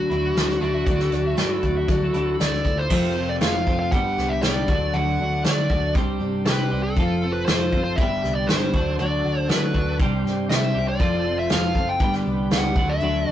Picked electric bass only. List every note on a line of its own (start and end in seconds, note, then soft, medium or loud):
0.10 0.31 D2 medium
0.36 0.56 D2 medium
0.61 0.82 D2 medium
0.87 1.07 D2 medium
1.11 1.32 D2 medium
1.37 1.58 G2 medium
1.63 1.84 D2 medium
1.88 2.09 D2 medium
2.14 2.35 D2 medium
2.40 2.60 D2 medium
2.65 2.86 D2 medium
2.90 3.37 F1 loud
3.41 3.65 F1 medium
3.67 3.90 F1 loud
4.18 4.41 C2 medium
4.44 4.67 C2 medium
4.68 4.92 D2 medium
4.94 5.17 D2 medium
5.19 5.43 D2 medium
5.45 5.68 D3 medium
5.70 5.93 D2 loud
5.95 6.19 C2 medium
6.21 6.44 G2 loud
6.46 6.69 C3 medium
6.71 6.95 C2 medium
6.97 7.43 F1 loud
7.48 7.71 F1 medium
7.73 7.96 F#1 medium
8.24 8.47 C2 medium
8.74 8.97 D2 medium
8.99 9.22 D2 medium
9.24 9.47 D2 loud
9.49 9.72 D3 medium
9.74 10.01 D2 medium
10.00 10.23 C2 medium
10.24 10.47 G2 medium
10.50 10.73 C3 medium
10.75 10.98 C2 medium
11.00 11.46 F1 medium
11.51 11.74 F1 medium
11.75 11.98 F#1 medium
12.01 12.24 G1 loud
12.26 12.49 C2 medium
12.50 12.74 C#2 medium
12.76 12.99 D2 medium
13.01 13.24 D2 loud
13.27 13.31 D2 medium